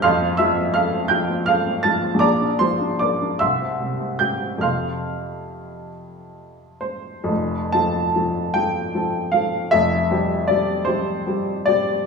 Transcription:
\new Staff \with { instrumentName = "Upright piano" } { \time 6/8 \key f \major \tempo 4. = 50 << { <f'' c''' f'''>8 <e'' e'''>8 <f'' f'''>8 <g'' g'''>8 <f'' f'''>8 <a'' a'''>8 | <d'' bes'' d'''>8 <c'' c'''>8 <d'' d'''>8 <e'' c''' e'''>4 <g'' g'''>8 | <f'' c''' f'''>4. r4 c''8~ | c''8 a''4 g''4 f''8 |
e''4 d''8 c''4 d''8 | } \\ { f,16 c'16 f16 c'16 a'16 c'16 f16 c'16 a'16 c'16 f16 c'16 | bes,,16 d'16 f16 d'16 bes'16 d'16 c,16 c'16 c16 c'16 g'16 c'16 | <f, c c' a'>2. | <f,, f,>8 <f c' a'>8 <f c' a'>8 <f c' a'>8 <f c' a'>8 <f c' a'>8 |
<f,, f,>8 <g c' g'>8 <g c' g'>8 <g c' g'>8 <g c' g'>8 <g c' g'>8 | } >> }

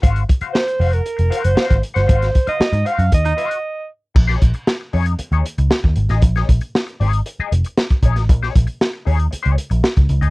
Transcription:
<<
  \new Staff \with { instrumentName = "Alto saxophone" } { \time 4/4 \key bes \minor \tempo 4 = 116 r4 c''8. bes'4 c''8 c''8 c''16~ | c''8. ees''8. f''8 ees''4. r8 | r1 | r1 |
r1 | }
  \new Staff \with { instrumentName = "Clean electric guitar" } { \time 4/4 \key bes \minor <ges' c'' f''>8 r16 <ges' c'' f''>16 r8 <ges' c'' f''>8 r8 <ges' c'' f''>8 <ges' c'' f''>8 r16 <ges' c'' ges''>16 | <ges' c'' f''>8 r16 <ges' c'' f''>16 r8 <ges' c'' f''>8 r8 <ges' c'' f''>8 r4 | r16 <ees' aes' des''>8 r8. <ees' aes' des''>8 r16 <ees' aes' des''>8 r4 <ees' aes' ees''>16~ | <ees' aes' ees''>16 <ees' aes' des''>8 r8. <ees' aes' des''>8 r16 <ees' aes' ees''>8 r8. <ees' aes' des''>8 |
r16 <ees' aes' des''>8 r8. <ees' aes' des''>8 r16 <ees' aes' des''>8 r4 <ees' aes' ees''>16 | }
  \new Staff \with { instrumentName = "Baritone saxophone" } { \time 4/4 \key bes \minor r1 | r2 r16 ees'16 r4. | r1 | r1 |
r1 | }
  \new Staff \with { instrumentName = "Picked electric bass" } { \clef bass \time 4/4 \key bes \minor aes,,8 r4 f,,8 r16 f,,16 r16 ges,,16 r16 aes,,16 r16 g,,16 | aes,,8 r8. aes,16 r16 ges,16 ees,8 r4. | bes,,8 bes,,16 r8. f,8 r16 ees,16 r16 des,16 r16 ees,16 aes,,16 a,,16 | bes,,8 bes,,16 r8. aes,,8 r8 f,,16 r8. bes,,16 a,,16 |
bes,,8 bes,,16 r8. ees,8 r16 des,16 r16 bes,,16 r16 des,16 des,16 d,16 | }
  \new DrumStaff \with { instrumentName = "Drums" } \drummode { \time 4/4 <hh bd>16 hh16 <hh bd>16 hh16 sn16 hh16 hho16 hh16 hh16 hh16 hh16 hh16 sn16 <hh bd>16 hh16 <hh sn>16 | <hh bd>16 <hh sn>16 <hh bd>16 hh16 sn16 hh16 hh16 hh16 <hh bd>16 hh16 hh16 hh16 r4 | <cymc bd>16 sn16 <hh bd>16 hh16 sn8 hho16 hh16 hh16 hh16 hh16 hh16 sn16 bd16 hh16 <hh sn>16 | <hh bd>16 <hh sn>16 <hh bd>16 hh16 sn16 hh16 hho16 hh16 hh8 hh16 hh16 sn16 <hh bd>16 <hh bd>16 <hh sn>16 |
<hh bd>16 sn16 <hh bd>16 hh16 sn8 hho16 hh16 hh16 hh16 hh16 hh16 sn16 <hh bd>16 hh16 hh16 | }
>>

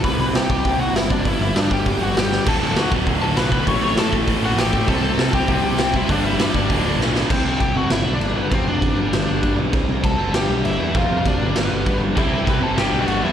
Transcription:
<<
  \new Staff \with { instrumentName = "Lead electric guitar" } { \time 4/4 \key g \lydian \tempo 4 = 198 <b' b''>8 <b' b''>8 <g' g''>8 <g' g''>4 <fis' fis''>8 <e' e''>8 <d' d''>8 | <e' e''>8 <e' e''>8 <d' d''>8 <g' g''>4 <fis' fis''>8 <g' g''>4 | <a' a''>8 <a' a''>8 <fis' fis''>8 r4 <a' a''>8 <b' b''>4 | <cis'' cis'''>8 <cis'' cis'''>8 <a' a''>8 r4 <fis' fis''>8 <g' g''>4 |
<a' a''>8 <a' a''>4 <g' g''>4 <g' g''>4 <e' e''>8 | <d' d''>8 <e' e''>4 <d' d''>4. r4 | <c' c''>4 <g' g''>8 <fis' fis''>8 <e' e''>8. <d' d''>8. <b b'>8 | <c' c''>8 <d' d''>2. r8 |
r4 <a' a''>4 <g' g''>4 <e' e''>4 | <f' f''>4 <d' d''>4 <b b'>4. r8 | <e' e''>4 <b' b''>8 <a' a''>8 <g' g''>8. <fis' fis''>8. <e' e''>8 | }
  \new Staff \with { instrumentName = "Distorted electric guitar" } { \clef bass \time 4/4 \key g \lydian <c g c'>2 <c g c'>2 | <g, d g>2 <g, d g>2 | <d, a, d>2 <d, a, d>2 | <a, e a>2 <a, e a>2 |
<c g c'>2 <c g c'>2 | <g, d g>2 <d, a, d>2 | <c g c'>4. <c g c'>8 <g, d g>4. <g, d g>8 | <f, c f>4. <g, d g>4. <g, d g>4 |
<c g c'>4. <c g c'>8 <g, d g>4. <g, d g>8 | <f, c f>4. <g, d g>4. <g, d g>4 | <c g c'>4. <c g c'>8 <g, d g>4. <g, d g>8 | }
  \new Staff \with { instrumentName = "Distorted electric guitar" } { \clef bass \time 4/4 \key g \lydian r1 | r1 | <d, a, d>8 <d, a, d>8 <d, a, d>8 <d, a, d>8 <d, a, d>8 <d, a, d>8 <d, a, d>8 <d, a, d>8 | <a, e a>8 <a, e a>8 <a, e a>8 <a, e a>8 <a, e a>8 <a, e a>8 <a, e a>8 <a, e a>8 |
<c g c'>8 <c g c'>8 <c g c'>8 <c g c'>8 <c g c'>8 <c g c'>8 <c g c'>8 <c g c'>8 | <g, d g>8 <g, d g>8 <g, d g>8 <g, d g>8 <d, a, d>8 <d, a, d>8 <d, a, d>8 <d, a, d>8 | r1 | r1 |
r1 | r1 | <c g c' e' g' c''>2 <g, d g b d' g'>2 | }
  \new Staff \with { instrumentName = "Overdriven electric guitar" } { \clef bass \time 4/4 \key g \lydian <c g c'>4. <c g c'>2~ <c g c'>8 | <g, d g>4. <g, d g>2~ <g, d g>8 | <d, a, d>4. <d, a, d>2~ <d, a, d>8 | <a, e a>4. <a, e a>2~ <a, e a>8 |
<c g c'>4. <c g c'>2~ <c g c'>8 | <g, d g>4. <g, d g>8 <d, a, d>4. <d, a, d>8 | <c g c'>4. <c g c'>8 <g, d g>4. <g, d g>8 | <f, c f>4. <g, d g>4. <g, d g>4 |
<c g c'>4. <c g c'>8 <g, d g>4. <g, d g>8 | <f, c f>4. <g, d g>4. <g, d g>4 | <c g c'>4. <c g c'>8 <g, d g>4. <g, d g>8 | }
  \new Staff \with { instrumentName = "Picked electric bass" } { \clef bass \time 4/4 \key g \lydian c,8 c,8 c8 c,8 c,8 c,8 fis,,4 | g,,8 g,,8 g,8 g,,8 g,,8 g,,8 g,,4 | d,,8 d,,8 d,8 d,,8 d,,8 d,,8 b,,4 | a,,8 a,,8 a,8 a,,8 a,,8 a,,8 a,,4 |
c,8 c,8 c8 c,8 c,8 c,8 c,4 | g,,8 g,,8 g,8 g,,8 d,,8 d,,8 b,,4 | c,8 c,8 c,8 fis,,8 g,,8 b,,8 g,,8 fis,,8 | f,,8 f,,8 a,,8 g,,8 g,,8 g,,8 g,,8 b,,8 |
c,8 c,8 c,8 fis,,8 g,,8 b,,8 g,,8 e,8 | f,,8 f,,8 f,,8 g,,8 g,,8 g,,8 g,,8 g,,8 | c,8 c,8 c,8 fis,,8 g,,8 b,,8 g,,8 e,8 | }
  \new DrumStaff \with { instrumentName = "Drums" } \drummode { \time 4/4 <hho bd>4 <hho sn>8 bd8 <hho bd>4 <hho sn>8 bd8 | <hho bd>4 <hho sn>8 bd8 <hho bd>4 <hho sn>8 sn8 | <cymc hho bd>4 <hho sn>8 bd8 <hho bd>4 <hho sn>8 bd8 | <hho bd>4 <hho sn>8 bd8 <hho bd>4 <hho sn>8 bd8 |
<hho bd>4 <hho sn>8 bd8 <hho bd>4 <hho sn>8 bd8 | <hho bd>4 <hho sn>8 bd8 <hho bd>4 sn8 sn8 | <cymc bd>4 <cymc bd>4 <cymc sn>4 cymc4 | <cymc bd>4 <cymc bd>4 <cymc sn>4 <cymc bd>4 |
<cymc bd>4 <cymc bd>4 <cymc sn>4 cymc4 | <cymc bd>4 <cymc bd>4 <cymc sn>4 <cymc bd>4 | <cymc bd>4 <cymc bd>4 <cymc sn>4 cymc4 | }
>>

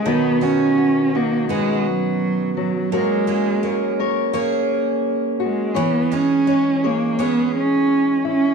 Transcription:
<<
  \new Staff \with { instrumentName = "Steel-string acoustic guitar" } { \time 4/4 \key b \major \tempo 4 = 84 << { <fis dis' fis' b'>4 fis'8 <dis' fis'>8 b'2 | <fis' ais' cis''>4 cis''8 <ais' cis''>8 cis''2 | cis''4 cis''8 <gis' cis''>8 cis''2 | } \\ { b,2.~ b,8 fis8 | fis2.~ fis8 fis'8 | e2.~ e8 e'8 | } >> }
  \new Staff \with { instrumentName = "Steel-string acoustic guitar" } { \time 4/4 \key b \major dis8 <b cis' fis'>4. <b cis' fis'>2 | ais8 <ais cis' gis'>8 ais4 <ais cis' gis'>2 | e8 <gis cis' gis'>8 gis4 <gis cis' gis'>2 | }
  \new Staff \with { instrumentName = "Cello" } { \time 4/4 \key b \major b8 cis'4 ais8 gis8 fis4 fis8 | gis4. r2 gis8 | b8 cis'4 ais8 b8 cis'4 cis'8 | }
>>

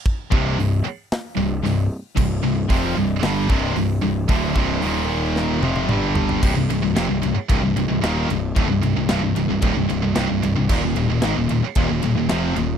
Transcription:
<<
  \new Staff \with { instrumentName = "Distorted electric guitar" } { \clef bass \time 4/4 \key c \minor \tempo 4 = 113 r8 <c, g, c>8 <c, g,>8 r4 <c, g,>8 <c, g,>8 r8 | <c, g,>8 <c, g,>8 <f, c f>8 <c, g,>8 <g, d g>8 <c, g, c>8 <c, g,>8 <c, g,>8 | <d, a, d>8 <c, g, c>8 <ees, bes, ees>4. <f, c f>8 <g, d g>4 | <c, g,>16 <c, g,>16 <c, g,>16 <c, g,>16 <f, c>16 <c, g,>16 <c, g,>16 r16 <c, g,>16 <c, g,>16 <c, g,>16 <c, g,>16 <ees, bes, ees>8 <c, g,>8 |
<d, a,>16 <c, g,>16 <c, g,>16 <c, g,>16 <c, g,>16 <c, g,>16 <c, g,>16 <c, g,>16 <d, a,>16 <c, g,>16 <c, g,>16 <c, g,>16 <c, g,>16 <c, g,>16 <c, g,>16 <c, g,>16 | <ees, bes,>16 <ees, bes,>16 <ees, bes,>16 <ees, bes,>16 <aes, ees>16 <ees, bes,>16 <ees, bes,>16 r16 <ees, bes,>16 <ees, bes,>16 <ees, bes,>16 <ees, bes,>16 <f, c f>8 <ees, bes,>8 | }
  \new Staff \with { instrumentName = "Distorted electric guitar" } { \clef bass \time 4/4 \key c \minor r8 <c, g, c>8 <c, g,>8 r4 <c, g,>8 <c, g,>8 r8 | <c, g,>8 <c, g,>8 <f, c f>8 <c, g,>8 <g, d g>8 <c, g, c>8 <c, g,>8 <c, g,>8 | <d, a, d>8 <c, g, c>8 <ees, bes, ees>4. <f, c f>8 <g, d g>4 | <c, g,>16 <c, g,>16 <c, g,>16 <c, g,>16 <f, c>16 <c, g,>16 <c, g,>16 r16 <c, g,>16 <c, g,>16 <c, g,>16 <c, g,>16 <ees, bes, ees>8 <c, g,>8 |
<d, a,>16 <c, g,>16 <c, g,>16 <c, g,>16 <c, g,>16 <c, g,>16 <c, g,>16 <c, g,>16 <d, a,>16 <c, g,>16 <c, g,>16 <c, g,>16 <c, g,>16 <c, g,>16 <c, g,>16 <c, g,>16 | <ees, bes,>16 <ees, bes,>16 <ees, bes,>16 <ees, bes,>16 <aes, ees>16 <ees, bes,>16 <ees, bes,>16 r16 <ees, bes,>16 <ees, bes,>16 <ees, bes,>16 <ees, bes,>16 <f, c f>8 <ees, bes,>8 | }
  \new Staff \with { instrumentName = "Overdriven electric guitar" } { \clef bass \time 4/4 \key c \minor r8 <c, g, c>8 <c, g,>8 r4 <c, g,>8 <c, g,>8 r8 | <c, g,>8 <c, g,>8 <f, c f>8 <c, g,>8 <g, d g>8 <c, g, c>8 <c, g,>8 <c, g,>8 | <d, a, d>8 <c, g, c>8 <ees, bes, ees>4. <f, c f>8 <g, d g>4 | <c, g,>16 <c, g,>16 <c, g,>16 <c, g,>16 <f, c>16 <c, g,>16 <c, g,>16 r16 <c, g,>16 <c, g,>16 <c, g,>16 <c, g,>16 <ees, bes, ees>8 <c, g,>8 |
<d, a,>16 <c, g,>16 <c, g,>16 <c, g,>16 <c, g,>16 <c, g,>16 <c, g,>16 <c, g,>16 <d, a,>16 <c, g,>16 <c, g,>16 <c, g,>16 <c, g,>16 <c, g,>16 <c, g,>16 <c, g,>16 | <ees, bes,>16 <ees, bes,>16 <ees, bes,>16 <ees, bes,>16 <aes, ees>16 <ees, bes,>16 <ees, bes,>16 r16 <ees, bes,>16 <ees, bes,>16 <ees, bes,>16 <ees, bes,>16 <f, c f>8 <ees, bes,>8 | }
  \new Staff \with { instrumentName = "Picked electric bass" } { \clef bass \time 4/4 \key c \minor r8 c,,8 c,,8 r4 c,,8 c,,8 r8 | c,,8 c,,8 f,,8 c,,8 g,,8 c,,8 c,,8 c,,8 | d,,8 c,,8 ees,,4. f,,8 g,,4 | c,,16 c,,16 c,,16 c,,16 f,,16 c,,16 c,,16 r16 c,,16 c,,16 c,,16 c,,16 ees,,8 c,,8 |
d,,16 c,,16 c,,16 c,,16 c,,16 c,,16 c,,16 c,,16 d,,16 c,,16 c,,16 c,,16 c,,16 c,,16 c,,16 c,,16 | ees,,16 ees,,16 ees,,16 ees,,16 aes,,16 ees,,16 ees,,16 r16 ees,,16 ees,,16 ees,,16 ees,,16 f,,8 ees,,8 | }
  \new DrumStaff \with { instrumentName = "Drums" } \drummode { \time 4/4 bd8 bd8 hho4 <hho sn>4 <hho sn>4 | <cymc bd>4 <hho bd>4 <hho sn>8 bd8 hho4 | <hho bd>8 bd8 hho4 sn8 tommh16 tommh16 toml8 tomfh16 tomfh16 | <cymc bd>8 cymr8 <cymr sn>8 cymr8 <bd cymr>8 cymr8 <cymr sn>8 cymr8 |
<bd cymr>8 cymr8 <cymr sn>8 cymr8 <bd cymr>8 cymr8 <cymr sn>8 cymr8 | <cymc bd>8 cymr8 <cymr sn>8 cymr8 <bd cymr>8 cymr8 <cymr sn>8 cymr8 | }
>>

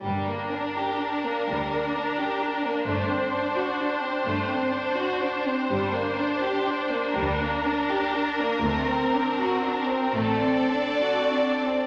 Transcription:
<<
  \new Staff \with { instrumentName = "Violin section" } { \time 6/8 \key g \minor \tempo 4. = 41 bes'2. | c''2.~ | c''4. bes'4.~ | bes'4. <a' d''>4. | }
  \new Staff \with { instrumentName = "Viola section" } { \time 6/8 \key g \minor d'2.~ | d'2. | d'2. | c'2. | }
  \new Staff \with { instrumentName = "Violin section" } { \time 6/8 \key g \minor g16 bes16 d'16 g'16 d'16 bes16 g16 bes16 d'16 g'16 d'16 bes16 | a16 c'16 d'16 fis'16 d'16 c'16 a16 c'16 d'16 fis'16 d'16 c'16 | g16 bes16 d'16 g'16 d'16 bes16 g16 bes16 d'16 g'16 d'16 bes16 | a16 c'16 d'16 fis'16 d'16 c'16 a16 c'16 d'16 fis'16 d'16 c'16 | }
  \new Staff \with { instrumentName = "Cello section" } { \clef bass \time 6/8 \key g \minor g,4. d,4. | g,4. g,4. | g,4. d,4. | d,4. a,4. | }
  \new Staff \with { instrumentName = "Double bass section" } { \clef bass \time 6/8 \key g \minor g,,4. d,4. | g,,4. g,,4. | g,,4. d,4. | d,4. a,,4. | }
>>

